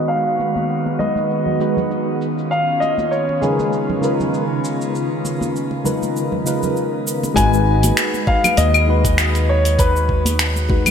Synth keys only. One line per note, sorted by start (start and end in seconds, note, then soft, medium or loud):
0.00 0.99 G#3 medium
0.00 0.99 D#4 medium
0.00 1.00 F#4 medium
0.00 1.01 B4 medium
0.99 1.57 G#3 medium
0.99 1.57 D#4 medium
0.99 1.58 F#4 medium
0.99 1.58 B4 medium
1.60 2.20 G#3 medium
1.60 2.20 D#4 medium
1.60 2.20 F#4 medium
1.60 2.20 B4 medium
3.42 4.00 C#3 medium
3.42 4.00 G#3 medium
3.42 4.00 D#4 medium
3.42 4.00 F4 medium
3.42 4.00 A#4 medium
3.42 4.00 B4 medium
4.01 5.81 C#3 medium
4.01 5.81 G#3 medium
4.01 5.81 D#4 medium
4.01 5.82 F4 medium
4.01 5.82 A#4 medium
4.01 5.83 B4 medium
5.84 6.42 C#3 medium
5.84 6.42 G#3 medium
5.84 6.42 D#4 medium
5.84 6.42 F4 medium
5.84 6.43 A#4 medium
5.84 6.43 B4 medium
6.44 7.34 C#3 medium
6.44 7.33 G#3 medium
6.44 7.35 D#4 medium
6.44 7.35 F4 medium
6.44 7.36 A#4 medium
6.48 7.36 B4 medium
7.34 8.21 G#3 loud
7.34 8.22 D#4 loud
7.34 8.22 F#4 medium
7.34 8.23 B4 loud
8.26 8.84 G#3 medium
8.26 8.85 D#4 medium
8.26 8.85 F#4 medium
8.26 8.85 B4 medium
8.86 10.66 G#3 medium
8.86 10.66 D#4 medium
8.86 10.67 F#4 medium
8.86 10.68 B4 medium
10.69 10.91 G#3 medium
10.69 10.91 D#4 medium
10.69 10.91 F#4 medium
10.69 10.91 B4 medium